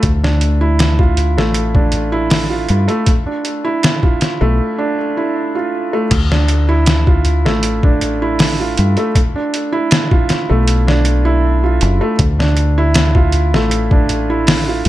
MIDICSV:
0, 0, Header, 1, 4, 480
1, 0, Start_track
1, 0, Tempo, 759494
1, 24, Time_signature, 4, 2, 24, 8
1, 9409, End_track
2, 0, Start_track
2, 0, Title_t, "Felt piano"
2, 0, Program_c, 0, 0
2, 0, Control_c, 0, 64, 127
2, 33, Control_c, 0, 64, 0
2, 148, Note_on_c, 0, 62, 70
2, 156, Control_c, 0, 64, 127
2, 257, Note_off_c, 0, 62, 0
2, 385, Note_on_c, 0, 64, 100
2, 615, Note_off_c, 0, 64, 0
2, 626, Note_on_c, 0, 65, 78
2, 855, Note_off_c, 0, 65, 0
2, 870, Note_on_c, 0, 57, 97
2, 935, Note_off_c, 0, 57, 0
2, 1109, Note_on_c, 0, 62, 77
2, 1217, Note_off_c, 0, 62, 0
2, 1341, Note_on_c, 0, 64, 96
2, 1573, Note_off_c, 0, 64, 0
2, 1579, Note_on_c, 0, 65, 75
2, 1812, Note_off_c, 0, 65, 0
2, 1820, Note_on_c, 0, 57, 101
2, 1890, Note_off_c, 0, 57, 0
2, 1952, Control_c, 0, 64, 0
2, 2063, Note_on_c, 0, 62, 73
2, 2080, Control_c, 0, 64, 127
2, 2174, Note_off_c, 0, 62, 0
2, 2303, Note_on_c, 0, 64, 101
2, 2534, Note_off_c, 0, 64, 0
2, 2547, Note_on_c, 0, 65, 77
2, 2776, Note_off_c, 0, 65, 0
2, 2787, Note_on_c, 0, 57, 101
2, 2853, Note_off_c, 0, 57, 0
2, 3023, Note_on_c, 0, 62, 83
2, 3135, Note_off_c, 0, 62, 0
2, 3268, Note_on_c, 0, 64, 87
2, 3497, Note_off_c, 0, 64, 0
2, 3509, Note_on_c, 0, 65, 76
2, 3737, Note_off_c, 0, 65, 0
2, 3749, Note_on_c, 0, 57, 97
2, 3815, Note_off_c, 0, 57, 0
2, 3872, Control_c, 0, 64, 0
2, 3983, Control_c, 0, 64, 127
2, 3994, Note_on_c, 0, 62, 70
2, 4100, Note_off_c, 0, 62, 0
2, 4225, Note_on_c, 0, 64, 99
2, 4455, Note_off_c, 0, 64, 0
2, 4470, Note_on_c, 0, 65, 72
2, 4697, Note_off_c, 0, 65, 0
2, 4712, Note_on_c, 0, 57, 90
2, 4776, Note_off_c, 0, 57, 0
2, 4955, Note_on_c, 0, 62, 79
2, 5061, Note_off_c, 0, 62, 0
2, 5195, Note_on_c, 0, 64, 89
2, 5420, Note_off_c, 0, 64, 0
2, 5434, Note_on_c, 0, 65, 73
2, 5660, Note_off_c, 0, 65, 0
2, 5672, Note_on_c, 0, 57, 95
2, 5736, Note_off_c, 0, 57, 0
2, 5792, Control_c, 0, 64, 0
2, 5912, Control_c, 0, 64, 127
2, 5913, Note_on_c, 0, 62, 77
2, 6020, Note_off_c, 0, 62, 0
2, 6146, Note_on_c, 0, 64, 99
2, 6376, Note_off_c, 0, 64, 0
2, 6391, Note_on_c, 0, 65, 77
2, 6618, Note_off_c, 0, 65, 0
2, 6633, Note_on_c, 0, 57, 94
2, 6697, Note_off_c, 0, 57, 0
2, 6871, Note_on_c, 0, 62, 81
2, 6979, Note_off_c, 0, 62, 0
2, 7110, Note_on_c, 0, 64, 96
2, 7338, Note_off_c, 0, 64, 0
2, 7353, Note_on_c, 0, 65, 76
2, 7579, Note_off_c, 0, 65, 0
2, 7590, Note_on_c, 0, 57, 99
2, 7655, Note_off_c, 0, 57, 0
2, 7713, Control_c, 0, 64, 0
2, 7823, Control_c, 0, 64, 127
2, 7831, Note_on_c, 0, 62, 78
2, 7938, Note_off_c, 0, 62, 0
2, 8075, Note_on_c, 0, 64, 101
2, 8300, Note_off_c, 0, 64, 0
2, 8315, Note_on_c, 0, 65, 81
2, 8540, Note_off_c, 0, 65, 0
2, 8557, Note_on_c, 0, 57, 100
2, 8619, Note_off_c, 0, 57, 0
2, 8798, Note_on_c, 0, 62, 78
2, 8902, Note_off_c, 0, 62, 0
2, 9036, Note_on_c, 0, 64, 94
2, 9261, Note_off_c, 0, 64, 0
2, 9277, Note_on_c, 0, 65, 73
2, 9409, Note_off_c, 0, 65, 0
2, 9409, End_track
3, 0, Start_track
3, 0, Title_t, "Fingered electric bass"
3, 0, Program_c, 1, 33
3, 22, Note_on_c, 1, 38, 93
3, 868, Note_off_c, 1, 38, 0
3, 868, Note_on_c, 1, 33, 88
3, 1681, Note_off_c, 1, 33, 0
3, 1706, Note_on_c, 1, 43, 95
3, 1816, Note_off_c, 1, 43, 0
3, 2790, Note_on_c, 1, 35, 88
3, 2904, Note_off_c, 1, 35, 0
3, 3866, Note_on_c, 1, 38, 100
3, 4716, Note_off_c, 1, 38, 0
3, 4716, Note_on_c, 1, 33, 91
3, 5525, Note_off_c, 1, 33, 0
3, 5554, Note_on_c, 1, 43, 88
3, 5660, Note_off_c, 1, 43, 0
3, 6641, Note_on_c, 1, 35, 86
3, 7447, Note_off_c, 1, 35, 0
3, 7472, Note_on_c, 1, 30, 106
3, 7579, Note_off_c, 1, 30, 0
3, 7708, Note_on_c, 1, 38, 99
3, 8560, Note_off_c, 1, 38, 0
3, 8560, Note_on_c, 1, 33, 92
3, 9367, Note_off_c, 1, 33, 0
3, 9409, End_track
4, 0, Start_track
4, 0, Title_t, "Drums"
4, 17, Note_on_c, 9, 42, 75
4, 19, Note_on_c, 9, 36, 95
4, 80, Note_off_c, 9, 42, 0
4, 83, Note_off_c, 9, 36, 0
4, 154, Note_on_c, 9, 38, 55
4, 217, Note_off_c, 9, 38, 0
4, 260, Note_on_c, 9, 42, 67
4, 323, Note_off_c, 9, 42, 0
4, 500, Note_on_c, 9, 42, 84
4, 507, Note_on_c, 9, 38, 115
4, 564, Note_off_c, 9, 42, 0
4, 571, Note_off_c, 9, 38, 0
4, 625, Note_on_c, 9, 36, 98
4, 688, Note_off_c, 9, 36, 0
4, 740, Note_on_c, 9, 42, 65
4, 803, Note_off_c, 9, 42, 0
4, 875, Note_on_c, 9, 38, 49
4, 938, Note_off_c, 9, 38, 0
4, 976, Note_on_c, 9, 42, 81
4, 1039, Note_off_c, 9, 42, 0
4, 1104, Note_on_c, 9, 36, 96
4, 1167, Note_off_c, 9, 36, 0
4, 1212, Note_on_c, 9, 42, 66
4, 1275, Note_off_c, 9, 42, 0
4, 1455, Note_on_c, 9, 46, 77
4, 1462, Note_on_c, 9, 38, 114
4, 1519, Note_off_c, 9, 46, 0
4, 1526, Note_off_c, 9, 38, 0
4, 1697, Note_on_c, 9, 42, 64
4, 1761, Note_off_c, 9, 42, 0
4, 1824, Note_on_c, 9, 42, 41
4, 1887, Note_off_c, 9, 42, 0
4, 1937, Note_on_c, 9, 42, 77
4, 1939, Note_on_c, 9, 36, 97
4, 2000, Note_off_c, 9, 42, 0
4, 2002, Note_off_c, 9, 36, 0
4, 2179, Note_on_c, 9, 42, 68
4, 2242, Note_off_c, 9, 42, 0
4, 2422, Note_on_c, 9, 42, 80
4, 2429, Note_on_c, 9, 38, 116
4, 2485, Note_off_c, 9, 42, 0
4, 2492, Note_off_c, 9, 38, 0
4, 2547, Note_on_c, 9, 36, 88
4, 2610, Note_off_c, 9, 36, 0
4, 2661, Note_on_c, 9, 42, 67
4, 2668, Note_on_c, 9, 38, 48
4, 2724, Note_off_c, 9, 42, 0
4, 2731, Note_off_c, 9, 38, 0
4, 3861, Note_on_c, 9, 42, 79
4, 3861, Note_on_c, 9, 49, 84
4, 3863, Note_on_c, 9, 36, 101
4, 3924, Note_off_c, 9, 42, 0
4, 3924, Note_off_c, 9, 49, 0
4, 3926, Note_off_c, 9, 36, 0
4, 3992, Note_on_c, 9, 38, 58
4, 4055, Note_off_c, 9, 38, 0
4, 4098, Note_on_c, 9, 42, 70
4, 4161, Note_off_c, 9, 42, 0
4, 4338, Note_on_c, 9, 42, 82
4, 4345, Note_on_c, 9, 38, 120
4, 4401, Note_off_c, 9, 42, 0
4, 4408, Note_off_c, 9, 38, 0
4, 4469, Note_on_c, 9, 36, 93
4, 4532, Note_off_c, 9, 36, 0
4, 4580, Note_on_c, 9, 42, 63
4, 4643, Note_off_c, 9, 42, 0
4, 4716, Note_on_c, 9, 38, 52
4, 4779, Note_off_c, 9, 38, 0
4, 4821, Note_on_c, 9, 42, 85
4, 4884, Note_off_c, 9, 42, 0
4, 4950, Note_on_c, 9, 36, 97
4, 5013, Note_off_c, 9, 36, 0
4, 5065, Note_on_c, 9, 42, 70
4, 5128, Note_off_c, 9, 42, 0
4, 5303, Note_on_c, 9, 46, 82
4, 5310, Note_on_c, 9, 38, 116
4, 5366, Note_off_c, 9, 46, 0
4, 5373, Note_off_c, 9, 38, 0
4, 5546, Note_on_c, 9, 42, 73
4, 5609, Note_off_c, 9, 42, 0
4, 5667, Note_on_c, 9, 42, 42
4, 5730, Note_off_c, 9, 42, 0
4, 5785, Note_on_c, 9, 36, 100
4, 5786, Note_on_c, 9, 42, 82
4, 5848, Note_off_c, 9, 36, 0
4, 5849, Note_off_c, 9, 42, 0
4, 6027, Note_on_c, 9, 42, 69
4, 6091, Note_off_c, 9, 42, 0
4, 6263, Note_on_c, 9, 42, 92
4, 6270, Note_on_c, 9, 38, 117
4, 6326, Note_off_c, 9, 42, 0
4, 6333, Note_off_c, 9, 38, 0
4, 6392, Note_on_c, 9, 36, 97
4, 6455, Note_off_c, 9, 36, 0
4, 6503, Note_on_c, 9, 42, 67
4, 6510, Note_on_c, 9, 38, 47
4, 6567, Note_off_c, 9, 42, 0
4, 6574, Note_off_c, 9, 38, 0
4, 6747, Note_on_c, 9, 42, 84
4, 6810, Note_off_c, 9, 42, 0
4, 6878, Note_on_c, 9, 38, 51
4, 6941, Note_off_c, 9, 38, 0
4, 6983, Note_on_c, 9, 42, 70
4, 7046, Note_off_c, 9, 42, 0
4, 7464, Note_on_c, 9, 42, 67
4, 7527, Note_off_c, 9, 42, 0
4, 7703, Note_on_c, 9, 42, 82
4, 7705, Note_on_c, 9, 36, 101
4, 7766, Note_off_c, 9, 42, 0
4, 7768, Note_off_c, 9, 36, 0
4, 7838, Note_on_c, 9, 38, 57
4, 7901, Note_off_c, 9, 38, 0
4, 7942, Note_on_c, 9, 42, 66
4, 8005, Note_off_c, 9, 42, 0
4, 8181, Note_on_c, 9, 42, 89
4, 8188, Note_on_c, 9, 38, 117
4, 8244, Note_off_c, 9, 42, 0
4, 8251, Note_off_c, 9, 38, 0
4, 8310, Note_on_c, 9, 36, 98
4, 8373, Note_off_c, 9, 36, 0
4, 8421, Note_on_c, 9, 42, 66
4, 8484, Note_off_c, 9, 42, 0
4, 8559, Note_on_c, 9, 38, 51
4, 8622, Note_off_c, 9, 38, 0
4, 8666, Note_on_c, 9, 42, 82
4, 8729, Note_off_c, 9, 42, 0
4, 8792, Note_on_c, 9, 36, 100
4, 8855, Note_off_c, 9, 36, 0
4, 8906, Note_on_c, 9, 42, 67
4, 8969, Note_off_c, 9, 42, 0
4, 9145, Note_on_c, 9, 46, 81
4, 9152, Note_on_c, 9, 38, 114
4, 9208, Note_off_c, 9, 46, 0
4, 9215, Note_off_c, 9, 38, 0
4, 9386, Note_on_c, 9, 42, 67
4, 9409, Note_off_c, 9, 42, 0
4, 9409, End_track
0, 0, End_of_file